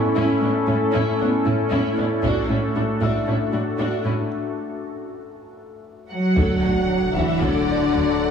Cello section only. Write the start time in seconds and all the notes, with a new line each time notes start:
0.16 A2
0.41 A2
0.67 A2
0.95 A2
1.20 A2
1.46 A2
1.71 A2
1.98 A2
2.23 A2
2.49 A2
2.76 A2
3.01 A2
3.26 A2
3.53 A2
3.79 A2
4.05 A2
6.12 F#3
7.15 E3
7.41 D3